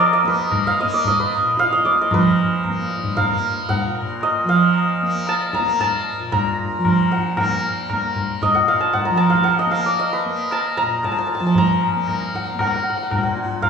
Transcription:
Already playing: tanpura A#2 F3 A#3, santur A#4 F5 A#5
0.00 santur D5
0.13 santur D#5
0.24 tanpura A#3, santur B4, tabla ke
0.52 tabla na, tabla ge
0.67 santur F5
0.80 tanpura A#3, santur D#5
0.94 santur D5
1.04 santur D#5, tabla tin, tabla ge
1.20 santur B4
1.31 tabla na
1.42 tanpura A#2
1.57 santur F5, tabla te
1.71 santur D#5, tabla te
1.85 santur D5, tabla ke
1.99 santur D#5, tabla te
2.10 tanpura F3, santur B4, tabla na, tabla ge
2.64 tabla na, tabla ge
2.69 tanpura A#3
2.90 tabla te
3.04 tabla ge
3.17 santur F5, tabla na, tabla ge
3.27 tanpura A#3
3.69 santur F#5, tabla tin, tabla ge
3.86 tanpura A#2
3.95 tabla na
4.21 santur D#5, tabla na
4.44 tanpura F3
4.49 santur F5
4.74 tabla na
5.03 tanpura A#3
5.27 santur A5, tabla na
5.53 santur A#5, tabla ke
5.61 tanpura A#3
5.80 santur A5, tabla na, tabla ge
6.19 tanpura A#2
6.32 santur A#5, tabla na, tabla ge
6.59 tabla ge
6.78 tanpura F3
6.85 tabla na, tabla ge
7.11 santur F#5, tabla te
7.36 tanpura A#3, santur F#5, tabla na, tabla ge
7.90 tanpura A#3, tabla na, tabla ge
8.15 tabla ge
8.42 santur D#5, tabla na, tabla ge
8.51 tanpura A#2, santur F#5
8.68 santur F5
8.81 santur A5
8.93 santur F#5, tabla tin, tabla ge
9.05 santur A#5
9.10 tanpura F3
9.16 santur A5 A#5, tabla na
9.30 santur F5
9.34 tabla ke
9.43 santur F#5 A5, tabla na
9.59 santur D#5
9.67 tanpura A#3
9.71 santur F5, tabla na
9.86 santur D5
9.99 santur D#5, tabla na
10.13 santur B4
10.26 tanpura A#3
10.51 santur A5, tabla na
10.77 santur A#5, tabla ke
10.82 tanpura A#2
11.03 santur A5, tabla na, tabla ge
11.12 santur A5
11.19 santur A5
11.27 santur A5
11.35 santur A5
11.40 tanpura F3, santur A5
11.47 santur A5
11.55 santur A#5, tabla tin, tabla ge
11.81 tabla na
11.96 tanpura A#3
12.08 tabla na, tabla ge
12.34 santur F#5, tabla ge
12.55 tanpura A#3
12.59 santur F#5, tabla na, tabla ge
12.67 santur F#5
12.76 santur F#5
12.83 santur F#5
12.90 santur F#5
12.98 santur F#5
13.03 santur F#5
13.11 tanpura A#2, santur F#5, tabla na, tabla ge
13.18 santur F#5
13.23 santur F#5
13.37 tabla te
13.50 tabla ge
13.62 santur F5, tabla na, tabla ge

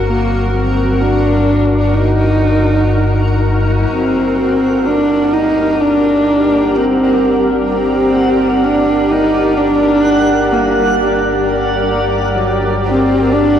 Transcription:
Already playing: synth drone G1 G2, ambient pad F#4 A#4 F#5
0.06 horsehead fiddle A#3
0.55 horsehead fiddle C4
1.02 horsehead fiddle D4
1.95 horsehead fiddle D#4
3.91 synth drone G1 G2, horsehead fiddle C4, ambient pad G4, synth texture F#5
4.68 grand piano A4
4.87 horsehead fiddle D4
5.33 horsehead fiddle D#4
5.46 grand piano D2
5.81 horsehead fiddle D4
6.45 ambient pad D5
6.76 horsehead fiddle C4
7.70 horsehead fiddle C4
8.65 horsehead fiddle D4
9.11 horsehead fiddle D#4
9.58 horsehead fiddle D4
10.52 horsehead fiddle A#3
12.35 grand piano F#3
12.87 horsehead fiddle C4
13.33 horsehead fiddle D4

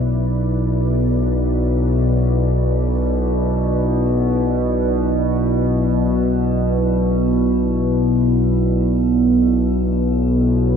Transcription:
Already playing: synth drone B1 B2, ambient pad E4 B4 D5
8.99 ambient pad B3
9.64 ambient pad E4
9.69 ambient pad G4

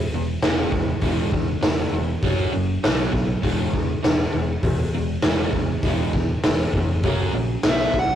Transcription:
Already playing: overdriven electric guitar E2 E3
0.13 picked electric bass E1, overdriven electric guitar E2 E3
0.42 picked electric bass E1, overdriven electric guitar E2 E3 G#3, snare, open hi-hat
0.72 picked electric bass E1, overdriven electric guitar E2 E3, kick
1.01 picked electric bass E1, overdriven electric guitar E2 E3 G#3, kick, open hi-hat
1.32 picked electric bass E1, overdriven electric guitar E2 E3, kick
1.61 picked electric bass E1, overdriven electric guitar E2 E3, snare, open hi-hat
1.93 picked electric bass E1, overdriven electric guitar E2 E3
2.23 picked electric bass F#1, overdriven electric guitar F#3 C#4 F#4, kick, open hi-hat
2.53 picked electric bass F#1, overdriven electric guitar F#3 C#4
2.83 picked electric bass B1, overdriven electric guitar B2 F#3 B3, snare, open hi-hat
3.12 picked electric bass B1, overdriven electric guitar B2 F#3, kick
3.42 picked electric bass E1, overdriven electric guitar E2 E3 G#3, kick, open hi-hat
3.73 picked electric bass E1, overdriven electric guitar E2 E3, kick
4.03 picked electric bass E1, overdriven electric guitar E2 E3, snare, open hi-hat
4.33 picked electric bass E1, overdriven electric guitar E2 E3
4.63 picked electric bass E1, overdriven electric guitar E2 E3, kick, open hi-hat
4.94 picked electric bass E1, overdriven electric guitar E2 E3
5.22 picked electric bass E1, overdriven electric guitar E2 E3 G#3, snare, open hi-hat
5.53 picked electric bass E1, overdriven electric guitar E2 E3, kick
5.83 picked electric bass E1, overdriven electric guitar E2 E3 G#3, kick, open hi-hat
6.13 picked electric bass E1, overdriven electric guitar E2 E3, kick
6.44 picked electric bass E1, overdriven electric guitar E2 E3, snare, open hi-hat
6.74 picked electric bass F1, overdriven electric guitar E2 E3, kick
7.03 picked electric bass F#1, overdriven electric guitar F#3 C#4, kick, open hi-hat
7.07 overdriven electric guitar F#4
7.33 picked electric bass A#1, overdriven electric guitar F#3 C#4
7.63 picked electric bass B1, overdriven electric guitar B2 F#3 B3, snare, open hi-hat
7.69 lead electric guitar E5
7.94 picked electric bass B1, overdriven electric guitar B2 F#3, kick
7.99 lead electric guitar F#5

